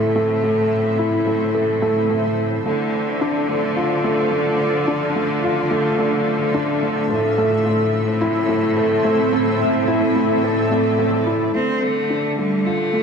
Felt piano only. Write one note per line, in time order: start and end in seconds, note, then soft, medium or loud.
0.00 0.16 A3 medium
0.00 0.99 E4 medium
0.00 1.54 A4 medium
0.16 0.32 A3 medium
0.43 0.70 A3 medium
0.99 1.25 E4 medium
1.27 1.53 A3 medium
1.54 1.81 A4 medium
1.82 1.98 A3 medium
2.10 2.36 A3 medium
2.66 2.92 A3 medium
3.21 3.48 D4 medium
3.49 3.75 A3 medium
3.76 4.03 F4 medium
4.04 4.20 A3 medium
4.32 4.59 A3 medium
4.88 5.14 D4 medium
5.16 5.42 A3 medium
5.43 5.70 F4 medium
5.71 5.87 A3 medium
5.98 6.25 A3 medium
6.54 6.81 D4 medium
6.82 7.09 A3 medium
7.10 7.37 A4 medium
7.38 7.54 A3 medium
7.66 7.92 A3 medium
8.21 8.48 E4 loud
8.49 8.75 A3 medium
8.77 9.03 A4 medium
9.04 9.20 A3 medium
9.33 9.59 A3 medium
9.88 10.14 E4 medium
10.16 10.42 A3 medium
10.43 10.70 A4 medium
10.71 10.97 A3 medium
10.99 11.25 A3 medium
11.27 11.43 E4 medium
11.55 11.81 A3 medium
12.10 12.37 D4 medium
12.38 12.64 A3 medium
12.65 12.92 F4 medium
12.93 13.03 A3 medium